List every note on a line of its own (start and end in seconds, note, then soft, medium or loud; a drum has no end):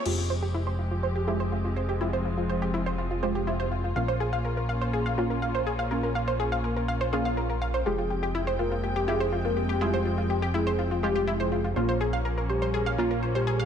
0.05 3.93 F1 medium
0.05 3.92 F3 medium
0.05 3.92 G#3 medium
0.05 1.25 G#3 medium
0.05 3.92 C4 medium
0.05 1.25 F4 medium
0.05 0.09 F4 medium
0.05 1.99 G4 medium
0.05 1.25 G4 medium
0.05 crash medium
0.18 0.23 F4 medium
0.30 0.33 C5 medium
0.43 0.48 G4 medium
0.54 0.60 E4 medium
0.67 0.72 C5 medium
0.79 0.82 F4 medium
0.91 0.97 F4 medium
1.03 1.07 C5 medium
1.16 1.21 G4 medium
1.27 1.98 G#3 medium
1.27 1.33 E4 medium
1.27 1.98 F4 medium
1.27 1.98 G4 loud
1.40 1.45 C5 loud
1.52 1.55 F4 medium
1.64 1.70 F4 medium
1.76 1.80 C5 medium
1.89 1.94 G4 loud
2.01 3.20 G#3 medium
2.01 2.06 E4 medium
2.01 3.20 F4 medium
2.01 7.82 F4 medium
2.01 3.20 G4 medium
2.13 2.19 C5 medium
2.25 2.29 F4 medium
2.38 2.43 F4 medium
2.50 2.53 C5 medium
2.62 2.67 G4 loud
2.74 2.79 E4 loud
2.86 2.92 C5 loud
2.98 3.02 F4 medium
3.11 3.16 F4 medium
3.23 3.93 G#3 medium
3.23 3.93 F4 medium
3.23 3.93 G4 loud
3.23 3.26 C5 medium
3.35 3.41 G4 medium
3.47 3.53 E4 medium
3.60 3.65 C5 loud
3.72 3.75 F4 medium
3.84 3.89 F4 medium
3.96 7.84 A#1 medium
3.96 5.15 A#3 medium
3.96 7.82 A#3 medium
3.96 5.15 C#4 medium
3.96 7.82 C#4 medium
3.96 5.15 F4 medium
3.96 3.99 F5 loud
4.08 4.14 C5 loud
4.20 4.26 G#4 loud
4.33 4.38 F5 loud
4.45 4.48 A#4 medium
4.57 4.62 A#4 medium
4.69 4.72 F5 loud
4.81 4.87 C5 medium
4.93 4.99 G#4 medium
5.06 5.11 F5 medium
5.18 5.88 A#3 loud
5.18 5.88 C#4 medium
5.18 5.88 F4 loud
5.18 5.21 A#4 medium
5.30 5.36 A#4 medium
5.42 5.46 F5 medium
5.55 5.60 C5 medium
5.67 5.72 G#4 medium
5.79 5.84 F5 medium
5.91 7.10 A#3 medium
5.91 7.10 C#4 medium
5.91 7.10 F4 medium
5.91 5.94 A#4 medium
6.03 6.09 A#4 medium
6.15 6.19 F5 medium
6.28 6.33 C5 medium
6.40 6.45 G#4 loud
6.52 6.58 F5 medium
6.64 6.67 A#4 medium
6.76 6.82 A#4 medium
6.88 6.92 F5 loud
7.01 7.06 C5 loud
7.13 7.83 A#3 medium
7.13 7.83 C#4 medium
7.13 7.83 F4 loud
7.13 7.18 G#4 loud
7.25 7.31 F5 loud
7.37 7.41 A#4 medium
7.50 7.55 A#4 medium
7.62 7.65 F5 loud
7.74 7.79 C5 loud
7.86 11.74 F1 medium
7.86 13.65 F3 medium
7.86 9.05 G#3 medium
7.86 11.72 G#3 medium
7.86 11.72 C4 medium
7.86 7.89 F4 medium
7.86 9.05 F4 medium
7.86 9.05 G4 medium
7.86 8.13 G#4 loud
7.86 11.72 G5 medium
7.98 8.04 F4 medium
8.10 8.16 G4 medium
8.23 8.28 G4 loud
8.35 8.40 E4 loud
8.47 8.53 C5 loud
8.59 8.63 F4 medium
8.59 8.95 A#4 medium
8.72 8.77 F4 medium
8.84 8.89 G4 medium
8.96 9.01 G4 loud
9.08 9.78 G#3 medium
9.08 9.14 E4 loud
9.08 9.78 F4 medium
9.08 9.78 G4 loud
9.08 9.35 G#4 medium
9.20 9.26 C5 loud
9.32 9.36 F4 medium
9.45 9.50 F4 medium
9.45 9.71 A#4 medium
9.57 9.62 G4 medium
9.69 9.75 G4 medium
9.81 11.00 G#3 medium
9.81 9.87 E4 medium
9.81 11.00 F4 medium
9.81 10.08 G4 loud
9.81 11.00 G#4 medium
9.94 9.99 C5 medium
10.05 10.09 F4 medium
10.18 10.23 F4 medium
10.30 10.36 G4 medium
10.42 10.48 G4 loud
10.54 10.60 E4 loud
10.54 10.90 G#4 medium
10.67 10.72 C5 loud
10.79 10.82 F4 medium
10.91 10.97 F4 medium
11.03 11.73 G#3 medium
11.03 11.73 F4 medium
11.03 11.30 G4 medium
11.03 11.73 G4 loud
11.03 11.09 G4 medium
11.16 11.21 G4 loud
11.28 11.33 E4 loud
11.40 11.66 G#4 medium
11.40 11.45 C5 loud
11.52 11.55 F4 medium
11.64 11.70 F4 medium
11.76 13.65 A#1 medium
11.76 12.95 A#3 medium
11.76 13.65 A#3 medium
11.76 12.95 C#4 medium
11.76 13.65 C#4 medium
11.76 12.95 F4 medium
11.76 12.03 F4 loud
11.76 11.82 C5 medium
11.89 11.94 C5 loud
12.01 12.06 G#4 medium
12.13 12.19 F5 loud
12.25 12.28 A#4 medium
12.38 12.43 A#4 medium
12.49 12.85 G4 medium
12.49 12.55 C5 medium
12.62 12.67 C5 medium
12.74 12.80 G#4 loud
12.86 12.92 F5 loud
12.98 13.65 A#3 loud
12.98 13.65 C#4 medium
12.98 13.65 F4 loud
12.98 13.25 F4 medium
12.98 13.02 A#4 medium
13.11 13.16 A#4 medium
13.23 13.28 C5 medium
13.35 13.62 G4 medium
13.35 13.41 C5 medium
13.47 13.53 G#4 loud
13.60 13.65 F5 loud